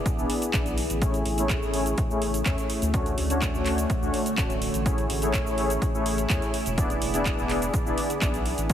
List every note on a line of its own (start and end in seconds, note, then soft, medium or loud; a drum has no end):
0.00 1.00 D3 medium
0.00 1.00 B3 medium
0.00 2.90 E4 medium
0.00 2.90 G#4 medium
0.06 kick loud
0.06 closed hi-hat medium
0.06 cabasa medium
0.18 0.27 E1 medium
0.18 0.29 B3 loud
0.18 0.29 D4 medium
0.18 0.29 E4 medium
0.18 0.29 G#4 medium
0.18 0.29 D5 loud
0.18 cabasa soft
0.30 open hi-hat loud
0.42 closed hi-hat medium
0.42 cabasa medium
0.54 0.86 B1 medium
0.54 0.65 B3 medium
0.54 0.65 D4 medium
0.54 0.66 E4 medium
0.54 0.65 G#4 medium
0.54 0.66 D5 loud
0.54 kick loud
0.54 clap loud
0.54 closed hi-hat medium
0.54 cabasa medium
0.66 closed hi-hat soft
0.66 cabasa soft
0.78 open hi-hat medium
0.90 1.22 A1 loud
0.90 closed hi-hat soft
0.90 cabasa medium
1.02 2.92 C#3 medium
1.02 6.74 A3 medium
1.02 1.13 A3 loud
1.02 1.14 C#4 medium
1.02 1.14 E4 medium
1.02 1.13 G#4 medium
1.02 1.14 C#5 loud
1.02 kick loud
1.02 closed hi-hat medium
1.02 cabasa medium
1.14 closed hi-hat soft
1.14 cabasa soft
1.26 1.58 A1 medium
1.26 open hi-hat loud
1.38 1.71 A3 medium
1.38 1.71 C#4 medium
1.38 1.71 E4 medium
1.38 1.71 G#4 medium
1.38 1.71 C#5 loud
1.38 closed hi-hat soft
1.38 cabasa medium
1.50 kick loud
1.50 clap loud
1.50 closed hi-hat medium
1.50 cabasa medium
1.62 1.94 A1 medium
1.62 cabasa soft
1.74 1.85 A3 medium
1.74 1.86 C#4 medium
1.74 1.85 E4 medium
1.74 1.85 G#4 medium
1.74 1.85 C#5 loud
1.74 open hi-hat medium
1.86 closed hi-hat medium
1.86 cabasa medium
1.98 kick loud
1.98 closed hi-hat medium
1.98 cabasa medium
2.10 2.42 A1 medium
2.10 2.21 A3 loud
2.10 2.21 C#4 medium
2.10 2.21 E4 medium
2.10 2.21 G#4 medium
2.10 2.21 C#5 loud
2.10 cabasa soft
2.22 open hi-hat loud
2.34 closed hi-hat medium
2.34 cabasa medium
2.46 2.56 E2 medium
2.46 2.58 A3 medium
2.46 2.57 C#4 medium
2.46 2.57 E4 medium
2.46 2.57 G#4 medium
2.46 2.58 C#5 medium
2.46 kick loud
2.46 clap loud
2.46 closed hi-hat medium
2.46 cabasa medium
2.58 closed hi-hat soft
2.58 cabasa soft
2.70 open hi-hat loud
2.82 3.14 D2 loud
2.82 closed hi-hat soft
2.82 cabasa medium
2.94 4.84 D3 medium
2.94 3.05 A3 loud
2.94 3.06 C#4 medium
2.94 3.05 D4 medium
2.94 4.84 F#4 medium
2.94 3.05 F#4 medium
2.94 4.84 C#5 medium
2.94 3.05 C#5 loud
2.94 kick loud
2.94 closed hi-hat medium
2.94 cabasa medium
3.06 closed hi-hat soft
3.06 cabasa soft
3.18 3.50 D2 loud
3.18 open hi-hat loud
3.30 3.63 A3 medium
3.30 3.63 C#4 medium
3.30 3.63 D4 medium
3.30 3.63 F#4 medium
3.30 3.63 C#5 loud
3.30 closed hi-hat soft
3.30 cabasa medium
3.42 kick loud
3.42 clap loud
3.42 closed hi-hat medium
3.42 cabasa medium
3.54 3.86 D2 medium
3.54 cabasa soft
3.66 3.78 A3 medium
3.66 3.78 C#4 medium
3.66 3.78 D4 medium
3.66 3.77 F#4 medium
3.66 3.78 C#5 medium
3.66 clap medium
3.66 open hi-hat medium
3.78 closed hi-hat soft
3.78 cabasa medium
3.90 kick loud
3.90 closed hi-hat medium
3.90 cabasa medium
4.02 4.11 D2 medium
4.02 4.13 A3 loud
4.02 4.13 C#4 medium
4.02 4.13 D4 medium
4.02 4.13 F#4 medium
4.02 4.13 C#5 loud
4.02 cabasa soft
4.14 open hi-hat loud
4.26 closed hi-hat medium
4.26 cabasa medium
4.38 4.70 D1 loud
4.38 4.50 A3 medium
4.38 4.50 C#4 medium
4.38 4.50 D4 medium
4.38 4.50 F#4 medium
4.38 4.50 C#5 loud
4.38 kick loud
4.38 clap loud
4.38 closed hi-hat medium
4.38 cabasa medium
4.50 closed hi-hat soft
4.50 cabasa soft
4.62 open hi-hat medium
4.74 5.06 A1 medium
4.74 closed hi-hat soft
4.74 cabasa medium
4.86 6.76 C#3 medium
4.86 4.97 A3 loud
4.86 4.98 C#4 medium
4.86 4.98 E4 medium
4.86 8.66 E4 medium
4.86 4.98 G#4 medium
4.86 8.73 G#4 medium
4.86 4.98 C#5 loud
4.86 kick loud
4.86 closed hi-hat medium
4.86 cabasa medium
4.98 closed hi-hat soft
4.98 cabasa soft
5.10 5.42 A1 loud
5.10 open hi-hat loud
5.22 5.55 A3 medium
5.22 5.55 C#4 medium
5.22 5.55 E4 medium
5.22 5.55 G#4 medium
5.22 5.55 C#5 loud
5.22 closed hi-hat soft
5.22 cabasa medium
5.34 kick loud
5.34 clap loud
5.34 closed hi-hat medium
5.34 cabasa medium
5.46 5.78 A1 medium
5.46 cabasa soft
5.58 5.70 A3 medium
5.58 5.70 C#4 medium
5.58 5.70 E4 medium
5.58 5.70 G#4 medium
5.58 5.70 C#5 loud
5.58 open hi-hat medium
5.70 closed hi-hat soft
5.70 cabasa medium
5.82 kick loud
5.82 closed hi-hat medium
5.82 cabasa medium
5.94 6.26 A1 medium
5.94 6.05 A3 loud
5.94 6.05 C#4 medium
5.94 6.05 E4 medium
5.94 6.05 G#4 medium
5.94 6.05 C#5 loud
5.94 cabasa soft
6.06 open hi-hat loud
6.18 closed hi-hat medium
6.18 cabasa medium
6.30 6.40 E2 medium
6.30 6.42 A3 medium
6.30 6.42 C#4 medium
6.30 6.42 E4 medium
6.30 6.42 G#4 medium
6.30 6.42 C#5 loud
6.30 kick loud
6.30 clap loud
6.30 closed hi-hat medium
6.30 cabasa medium
6.42 closed hi-hat soft
6.42 cabasa soft
6.54 open hi-hat medium
6.66 6.98 E1 loud
6.66 closed hi-hat soft
6.66 cabasa medium
6.78 8.68 D3 medium
6.78 6.90 B3 loud
6.78 8.68 B3 medium
6.78 6.90 D4 medium
6.78 6.90 E4 medium
6.78 6.90 G#4 medium
6.78 6.90 D5 loud
6.78 kick loud
6.78 closed hi-hat medium
6.78 cabasa medium
6.90 closed hi-hat soft
6.90 cabasa soft
7.02 7.34 E1 loud
7.02 open hi-hat loud
7.14 7.47 B3 medium
7.14 7.47 D4 medium
7.14 7.47 E4 medium
7.14 7.47 G#4 medium
7.14 7.47 D5 loud
7.14 closed hi-hat medium
7.14 cabasa medium
7.26 kick medium
7.26 clap loud
7.26 closed hi-hat medium
7.26 cabasa medium
7.38 7.70 E1 loud
7.38 cabasa soft
7.50 7.62 B3 medium
7.50 7.62 D4 medium
7.50 7.62 E4 medium
7.50 7.62 G#4 medium
7.50 7.62 D5 loud
7.50 clap medium
7.50 open hi-hat medium
7.62 closed hi-hat medium
7.62 cabasa medium
7.74 kick loud
7.74 closed hi-hat medium
7.74 cabasa medium
7.86 7.95 E1 medium
7.86 7.97 B3 medium
7.86 7.97 D4 medium
7.86 7.97 E4 medium
7.86 7.97 G#4 medium
7.86 7.97 D5 loud
7.86 cabasa soft
7.98 open hi-hat loud
8.10 closed hi-hat medium
8.10 cabasa medium
8.22 8.54 B1 medium
8.22 8.34 B3 medium
8.22 8.34 D4 medium
8.22 8.34 E4 medium
8.22 8.34 G#4 medium
8.22 8.34 D5 loud
8.22 kick loud
8.22 clap loud
8.22 closed hi-hat medium
8.22 cabasa medium
8.34 closed hi-hat soft
8.34 cabasa soft
8.46 open hi-hat medium
8.58 8.73 A1 loud
8.58 closed hi-hat soft
8.58 cabasa medium
8.70 8.73 A3 medium
8.70 8.73 C#4 medium
8.70 8.73 E4 medium
8.70 8.73 G#4 medium
8.70 8.73 C#5 loud
8.70 kick loud
8.70 closed hi-hat medium